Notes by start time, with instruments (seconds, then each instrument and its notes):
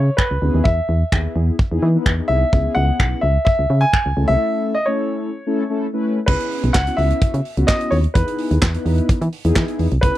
Already playing: fm bass C#3, grand piano C#5
0.17 grand piano B4, finger snap, kick
0.31 fm bass C#2
0.42 fm bass D2, analog polysynth B3 C#4 E4 G#4
0.54 fm bass D#2
0.64 fm bass E2, grand piano E5, kick
0.89 fm bass E2
1.12 fm bass D#2, analog polysynth B3 E4 G#4, finger snap, kick
1.36 fm bass E2
1.59 kick
1.71 fm bass E2, analog polysynth B3 D#4 E4 G#4
1.83 fm bass E3
1.95 analog polysynth B3 D#4 E4 B4
2.06 fm bass E2, finger snap, kick
2.18 analog polysynth B3 D#4 E4 G#4
2.28 fm bass C2, grand piano E5
2.53 fm bass C#2, analog polysynth B3 C#4 E4 G#4, kick
2.75 fm bass C#2, grand piano F#5
3.00 fm bass B1, finger snap, kick
3.21 fm bass C#2, grand piano E5
3.45 grand piano E5, kick
3.59 fm bass C#2
3.70 fm bass C#3
3.81 grand piano G#5
3.93 finger snap, kick
4.06 fm bass C#2
4.17 fm bass C#2, analog polysynth A3 C#4 E4 A4
4.28 fm bass C2, grand piano E5
4.75 grand piano D#5
4.86 analog polysynth A3 C#4 E4 A4, grand piano C#5
5.46 analog polysynth A3 C#4 E4 A4
5.70 analog polysynth A3 C#4 E4 A4
5.93 analog polysynth A3 C#4 E4 B4
6.26 fm bass C#2, analog polysynth B3 C#4 E4 G#4, grand piano B4, kick, crash
6.40 closed hi-hat
6.51 open hi-hat
6.64 fm bass B1, closed hi-hat
6.73 fm bass C#2, grand piano F#5, kick, snare, clap
6.87 analog polysynth B3 C#4 E4 F#4, closed hi-hat
6.97 fm bass C#2, grand piano E5, open hi-hat
7.11 closed hi-hat
7.22 fm bass C#3, kick, closed hi-hat
7.34 fm bass C#3, closed hi-hat
7.45 open hi-hat
7.57 fm bass C#2, analog polysynth B3 C#4 E4 F#4, closed hi-hat
7.67 grand piano D#5, kick, snare, clap
7.81 closed hi-hat
7.91 fm bass D#2, grand piano C#5, open hi-hat
8.04 closed hi-hat
8.14 fm bass E2, analog polysynth B3 D#4 E4 G#4, grand piano B4, kick, closed hi-hat
8.28 closed hi-hat
8.39 open hi-hat
8.51 fm bass D#2, closed hi-hat
8.62 fm bass E2, kick, snare, clap
8.74 analog polysynth B3 D#4 E4 B4, closed hi-hat
8.86 fm bass E2, open hi-hat
8.98 closed hi-hat
9.09 fm bass E3, kick, closed hi-hat
9.22 fm bass E3, closed hi-hat
9.33 open hi-hat
9.45 fm bass E2, analog polysynth B3 D#4 E4 G#4, closed hi-hat
9.56 fm bass E3, kick, snare, clap
9.68 closed hi-hat
9.79 fm bass E2, open hi-hat
9.92 fm bass C2, closed hi-hat
10.01 fm bass C#2, analog polysynth B3 C#4 E4 G#4, grand piano B4, kick, closed hi-hat